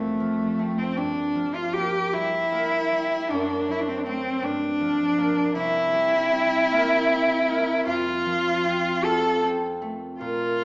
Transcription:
0.00 1.01 F2 soft
0.00 0.80 A3 medium
0.00 0.58 C4 soft
0.20 1.34 F3 soft
0.59 1.01 A3 soft
0.59 1.01 C4 soft
0.78 0.98 C4 soft
0.97 3.32 G2 soft
0.97 1.56 D4 medium
1.35 3.32 F3 soft
1.55 1.75 F4 medium
1.73 2.51 A#3 soft
1.73 2.15 G4 medium
2.13 2.91 G3 soft
2.13 3.30 E4 medium
2.52 3.32 A#3 soft
2.92 3.33 G3 soft
3.29 4.46 F#2 medium
3.29 3.72 D4 medium
3.68 4.46 F#3 soft
3.68 3.82 E4 soft
3.80 3.90 D4 soft
3.88 3.99 C4 soft
3.98 4.06 D4 soft
4.06 4.46 A3 soft
4.06 4.46 C4 medium
4.06 4.46 C4 soft
4.43 5.59 G2 medium
4.43 5.56 D4 medium
4.81 5.59 F3 soft
5.18 6.70 A#3 soft
5.18 5.59 D4 soft
5.55 7.90 C2 medium
5.55 7.84 E4 medium
5.93 7.90 G3 soft
6.32 7.07 C4 soft
6.71 7.47 A#3 soft
7.09 8.63 C4 soft
7.48 7.90 A#3 soft
7.85 10.22 F2 medium
7.85 9.06 F4 medium
8.26 10.64 F3 soft
8.64 9.42 C4 soft
9.03 10.64 F4 soft
9.03 9.42 A4 medium
9.43 10.24 C4 soft
9.82 10.60 A3 soft
10.20 10.64 A#2 soft
10.20 10.64 F4 medium

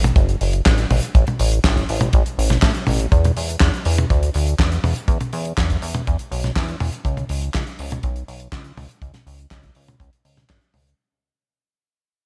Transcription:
0.00 0.12 A1 medium
0.04 closed hi-hat medium
0.04 high tom medium
0.16 0.36 F#1 loud
0.16 kick loud
0.16 closed hi-hat medium
0.29 closed hi-hat medium
0.41 0.61 F#1 medium
0.41 open hi-hat loud
0.53 closed hi-hat medium
0.66 0.86 A1 medium
0.66 kick loud
0.66 snare loud
0.66 clap loud
0.66 closed hi-hat medium
0.78 closed hi-hat medium
0.90 1.00 A1 loud
0.90 open hi-hat loud
0.90 high tom medium
1.03 closed hi-hat medium
1.15 1.25 A1 loud
1.15 kick loud
1.15 closed hi-hat medium
1.27 closed hi-hat medium
1.27 high tom medium
1.39 1.60 A1 loud
1.39 open hi-hat loud
1.52 closed hi-hat medium
1.64 1.84 A1 loud
1.64 kick loud
1.64 snare loud
1.64 clap medium
1.64 closed hi-hat medium
1.77 kick medium
1.77 closed hi-hat medium
1.89 2.09 A1 loud
1.89 open hi-hat loud
2.01 closed hi-hat soft
2.01 high tom medium
2.13 2.23 A1 loud
2.13 kick loud
2.13 closed hi-hat medium
2.26 closed hi-hat medium
2.38 2.58 A1 medium
2.38 open hi-hat loud
2.50 snare soft
2.50 closed hi-hat medium
2.50 high tom medium
2.62 2.73 A2 medium
2.62 kick loud
2.62 snare loud
2.62 clap loud
2.62 open hi-hat medium
2.75 closed hi-hat medium
2.87 3.07 A1 medium
2.87 open hi-hat loud
2.87 high tom medium
3.00 closed hi-hat medium
3.12 3.32 E2 loud
3.12 kick loud
3.12 closed hi-hat medium
3.24 closed hi-hat medium
3.24 high tom medium
3.37 3.56 E2 medium
3.37 open hi-hat loud
3.49 closed hi-hat medium
3.60 3.71 E2 medium
3.60 kick loud
3.60 snare loud
3.60 clap medium
3.60 closed hi-hat medium
3.74 closed hi-hat soft
3.85 4.06 E2 medium
3.85 open hi-hat loud
3.98 high tom medium
4.10 4.30 D2 loud
4.10 kick loud
4.10 closed hi-hat medium
4.23 closed hi-hat medium
4.34 4.55 D2 loud
4.34 open hi-hat loud
4.47 closed hi-hat medium
4.59 4.79 E2 medium
4.59 kick loud
4.59 snare loud
4.59 clap medium
4.59 closed hi-hat medium
4.72 closed hi-hat medium
4.84 4.94 E2 loud
4.84 open hi-hat loud
4.84 high tom medium
4.96 closed hi-hat medium
5.08 5.18 E2 loud
5.08 kick loud
5.08 closed hi-hat medium
5.21 closed hi-hat medium
5.21 high tom medium
5.33 5.53 E2 loud
5.33 open hi-hat loud
5.45 closed hi-hat medium
5.58 5.78 E2 loud
5.58 kick loud
5.58 snare loud
5.58 clap loud
5.58 closed hi-hat medium
5.70 kick medium
5.70 closed hi-hat medium
5.82 6.02 E2 loud
5.82 open hi-hat loud
5.94 closed hi-hat medium
5.94 high tom medium
6.07 6.17 E2 loud
6.07 kick loud
6.07 closed hi-hat medium
6.19 closed hi-hat medium
6.31 6.51 B1 loud
6.31 open hi-hat loud
6.44 snare soft
6.44 closed hi-hat medium
6.44 high tom medium
6.56 6.76 E2 loud
6.56 kick loud
6.56 snare loud
6.56 clap medium
6.56 open hi-hat medium
6.69 closed hi-hat medium
6.80 6.91 E2 medium
6.80 open hi-hat loud
6.80 high tom medium
6.92 closed hi-hat medium
7.05 7.25 C#2 loud
7.05 kick loud
7.05 closed hi-hat medium
7.17 closed hi-hat medium
7.17 high tom medium
7.29 7.50 C#2 medium
7.29 open hi-hat loud
7.42 closed hi-hat medium
7.54 7.65 C#2 medium
7.54 kick loud
7.54 snare loud
7.54 clap medium
7.54 closed hi-hat medium
7.67 closed hi-hat medium
7.79 7.99 C#2 medium
7.79 open hi-hat loud
7.91 closed hi-hat medium
7.91 high tom medium
8.03 8.24 B1 loud
8.03 kick loud
8.03 closed hi-hat medium
8.16 closed hi-hat medium
8.28 8.48 B1 loud
8.28 open hi-hat loud
8.40 closed hi-hat medium
8.52 8.72 C#2 medium
8.52 kick loud
8.52 snare loud
8.52 clap medium
8.52 closed hi-hat medium
8.64 closed hi-hat medium
8.77 8.87 C#2 medium
8.77 open hi-hat loud
8.77 high tom medium
8.89 closed hi-hat medium
9.02 9.12 C#2 loud
9.02 kick loud
9.02 closed hi-hat medium
9.14 snare soft
9.14 closed hi-hat medium
9.14 high tom medium
9.27 9.47 C#2 loud
9.27 open hi-hat loud
9.39 closed hi-hat medium
9.51 9.71 C#2 medium
9.51 kick loud
9.51 snare loud
9.51 clap loud
9.51 closed hi-hat medium
9.63 kick medium
9.63 closed hi-hat medium
9.75 9.96 C#2 loud
9.75 open hi-hat loud
9.88 closed hi-hat medium
9.88 high tom medium
10.00 10.10 C#2 loud
10.00 kick loud
10.00 closed hi-hat medium
10.13 closed hi-hat medium
10.25 10.45 C#2 medium
10.25 open hi-hat loud
10.37 snare soft
10.37 closed hi-hat medium
10.37 high tom medium
10.50 10.60 G#1 medium
10.50 kick loud
10.50 snare loud
10.50 clap loud
10.50 open hi-hat medium
10.61 closed hi-hat medium
10.74 10.94 C#2 medium
10.74 open hi-hat loud
10.74 high tom medium
10.87 closed hi-hat medium

